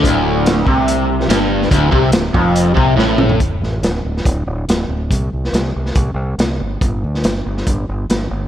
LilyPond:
<<
  \new Staff \with { instrumentName = "Overdriven electric guitar" } { \clef bass \time 4/4 \key g \lydian \tempo 4 = 141 d,4. c4. g,4 | d,8 c8 d,8 f,4 c8 a,4 | r1 | r1 |
r1 | }
  \new Staff \with { instrumentName = "Fingered electric bass" } { \clef bass \time 4/4 \key g \lydian d,,4. c,4. g,,4 | d,,8 c,8 d,,8 f,,4 c,8 a,,4 | d,,8 a,,8 d,,8 d,,8 d,,8 d,,8 d,,8 d,,8 | c,8 c,8 c,8 c,8 c,8 c,8 c,8 g,,8 |
g,,8 d,8 g,,8 g,,8 g,,8 g,,8 g,,8 g,,8 | }
  \new DrumStaff \with { instrumentName = "Drums" } \drummode { \time 4/4 <hh bd>4 <hh sn>8 bd8 hh8. sn16 <hh sn>8. sn16 | <hh bd>8 bd8 <hh sn>8 bd8 hh8 bd8 sn8 toml16 tomfh16 | <hh bd>8 sn8 <hh sn>8. sn16 <hh bd>4 <hh sn>4 | <hh bd>8. sn16 <hh sn>8. sn16 <hh bd>4 <hh sn>4 |
<hh bd>8. sn16 <hh sn>8. sn16 <hh bd>4 <hh sn>4 | }
>>